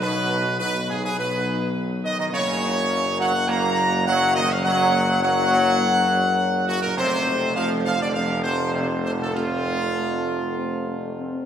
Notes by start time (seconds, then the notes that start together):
Already playing: B1
0.02 B2 F#3 D#4 B4
0.59 B2 F#3 D#4 B4
0.89 G#2 G#4
1.02 G#2 G#4
1.17 B2 F#3 D#4 B4
2.03 D#3 D#5
2.18 D#3 D#5
2.32 F#1 C#3 F#3 A#3 C#5
3.19 F#3 F#5
3.48 F#3 A#3 A#5
4.06 F#3 A#3 F#5
4.36 D#3 D#5
4.51 F3 F5
4.64 F#3 A#3 F#5
5.21 F#3 A#3 F#5
6.68 F#2 F#4
6.83 A#2 A#4
6.97 F1 C3 A3 C4 C5
7.55 F3 A3 C4 F5
7.85 F3 F5
8.00 D3 D5
8.14 F3 A3 C4 F5
8.44 C3 C5
8.73 C3 A3 C4 C5
9.05 C3 C5
9.20 A2 A4
9.34 F2 A3 C4 F4
9.96 A3
10.58 C4
10.88 C4
11.05 A3
11.20 C4